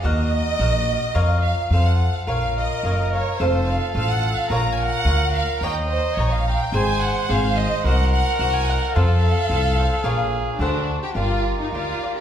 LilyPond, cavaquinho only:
\new Staff \with { instrumentName = "Cavaquinho" } { \time 2/4 \key bes \minor \tempo 4 = 108 <ges' bes' ees'' ges''>4 <ges' bes' ees'' ges''>4 | <f' bes' des'' f''>4 <f' a' c'' f''>4 | <f' bes' des'' f''>4 <f' bes' des'' f''>8 <bes' des'' f''>8 | <f' a' c'' f''>4 <f' a' c'' f''>4 |
<f' bes' des'' f''>4 <f' bes' des'' f''>4 | <des'' ees'' g'' bes''>4 <des'' ees'' g'' bes''>8 <ees'' g'' bes''>8 | <aes' c'' ees'' aes''>4 <aes' c'' ees'' aes''>4 | <ges' c'' ees'' ges''>4 <ges' c'' ees'' ges''>8 <c'' ees'' ges''>8 |
<f' a' c'' f''>4 <f' a' c'' f''>8 <a' c'' f''>8 | <f' bes' des'' f''>4 <d' a' c'' fis''>4 | \key g \minor <g' bes' d'' f''>4 <g' bes' d'' f''>8 <g' d'' f''>8 | }